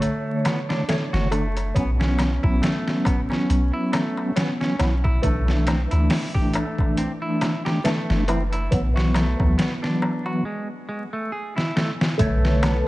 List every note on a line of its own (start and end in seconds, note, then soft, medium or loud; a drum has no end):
0.00 0.83 D3 medium
0.00 0.84 A3 medium
0.00 0.43 A3 medium
0.00 0.84 C#5 loud
0.00 closed hi-hat medium
0.00 darbuka tek soft
0.45 0.59 B3 medium
0.45 snare medium
0.45 closed hi-hat medium
0.45 darbuka tek medium
0.69 1.10 D4 medium
0.69 snare soft
0.69 darbuka tek soft
0.88 1.27 D3 medium
0.88 1.28 A3 medium
0.88 1.28 C#5 medium
0.88 snare loud
0.88 closed hi-hat medium
0.88 darbuka tek soft
1.13 1.72 F#1 medium
1.13 1.30 F#4 medium
1.13 snare soft
1.31 1.47 D3 medium
1.31 1.47 A3 medium
1.31 1.74 A3 medium
1.31 1.48 D4 loud
1.31 closed hi-hat medium
1.31 darbuka tek medium
1.57 closed hi-hat soft
1.57 darbuka tek soft
1.74 2.39 B1 medium
1.74 4.31 F#3 medium
1.74 1.89 B3 medium
1.74 4.32 B3 medium
1.74 4.33 C#4 medium
1.74 kick loud
1.74 closed hi-hat medium
1.74 darbuka tek soft
2.00 2.41 C#4 medium
2.00 snare medium
2.19 snare medium
2.19 closed hi-hat medium
2.19 darbuka tek medium
2.43 2.61 B1 medium
2.43 2.60 E4 medium
2.43 kick medium
2.43 darbuka tek soft
2.62 3.04 A3 medium
2.62 snare loud
2.62 closed hi-hat medium
2.62 darbuka tek soft
2.88 snare soft
3.05 3.20 B3 medium
3.05 kick medium
3.05 closed hi-hat medium
3.05 darbuka tek medium
3.30 3.71 C#4 medium
3.30 snare soft
3.30 darbuka tek soft
3.49 3.71 B1 medium
3.49 closed hi-hat medium
3.49 darbuka tek soft
3.73 3.91 E4 medium
3.92 4.34 A3 medium
3.92 snare soft
3.92 closed hi-hat medium
3.92 darbuka tek medium
4.17 darbuka tek medium
4.36 4.75 F#3 medium
4.36 4.50 B3 medium
4.36 4.76 B3 medium
4.36 4.76 C#4 loud
4.36 snare loud
4.36 closed hi-hat medium
4.36 darbuka tek soft
4.61 5.02 C#4 medium
4.61 snare soft
4.79 5.19 B1 medium
4.79 4.95 F#3 medium
4.79 4.95 B3 medium
4.79 4.95 E4 loud
4.79 snare medium
4.79 closed hi-hat medium
4.79 darbuka tek medium
5.04 5.21 E4 medium
5.04 kick medium
5.04 darbuka tek soft
5.22 5.87 B1 loud
5.22 7.79 E3 medium
5.22 5.65 A3 medium
5.22 7.80 A3 medium
5.22 7.80 D4 loud
5.22 kick loud
5.22 closed hi-hat medium
5.22 darbuka tek soft
5.48 snare soft
5.66 5.81 C4 medium
5.66 snare soft
5.66 closed hi-hat medium
5.66 darbuka tek medium
5.91 6.08 D2 medium
5.91 6.32 E4 medium
5.91 closed hi-hat soft
5.91 darbuka tek soft
6.10 snare loud
6.10 open hi-hat medium
6.10 darbuka tek soft
6.34 6.52 G4 medium
6.34 kick medium
6.54 6.95 A3 medium
6.54 closed hi-hat medium
6.54 darbuka tek medium
6.78 kick medium
6.78 darbuka tek soft
6.97 7.11 C4 medium
6.97 closed hi-hat medium
6.97 darbuka tek soft
7.22 7.63 E4 medium
7.41 snare medium
7.41 closed hi-hat medium
7.41 darbuka tek medium
7.65 7.82 G4 medium
7.65 snare soft
7.65 darbuka tek soft
7.84 8.23 E3 medium
7.84 8.26 A3 medium
7.84 8.24 A3 medium
7.84 8.24 D4 loud
7.84 snare loud
7.84 closed hi-hat medium
7.84 darbuka tek soft
8.10 8.68 F#1 loud
8.10 snare soft
8.28 8.43 E3 medium
8.28 8.43 A3 medium
8.28 8.42 C4 medium
8.28 8.44 E4 loud
8.28 closed hi-hat medium
8.28 darbuka tek medium
8.52 8.71 E4 medium
8.52 closed hi-hat soft
8.52 darbuka tek soft
8.71 9.35 B1 loud
8.71 10.43 E3 medium
8.71 10.43 F#3 medium
8.71 10.44 B3 loud
8.71 kick loud
8.71 closed hi-hat medium
8.71 darbuka tek soft
8.96 9.13 F#4 medium
8.96 snare soft
9.14 9.56 A3 medium
9.14 snare medium
9.14 closed hi-hat medium
9.14 darbuka tek medium
9.40 9.57 D2 medium
9.40 kick medium
9.40 darbuka tek soft
9.58 9.72 B3 medium
9.58 snare loud
9.58 closed hi-hat medium
9.58 darbuka tek soft
9.83 10.24 D4 medium
9.83 snare soft
10.02 darbuka tek medium
10.26 10.43 F#4 medium
10.26 darbuka tek soft
10.45 10.67 G#3 medium
10.89 11.03 G#3 medium
11.13 11.30 A3 medium
11.32 11.55 G#4 medium
11.56 11.75 E4 medium
11.56 snare soft
11.76 11.90 A3 medium
11.76 snare medium
12.01 snare medium
12.18 12.83 B1 loud
12.18 12.88 D3 medium
12.18 12.88 A3 medium
12.18 12.61 A3 medium
12.18 12.88 A4 medium
12.18 12.88 B4 medium
12.18 12.88 C#5 loud
12.18 12.88 A5 medium
12.18 kick loud
12.18 closed hi-hat medium
12.18 darbuka tek soft
12.45 snare soft
12.63 12.76 B3 medium
12.63 snare medium
12.63 closed hi-hat medium
12.63 darbuka tek loud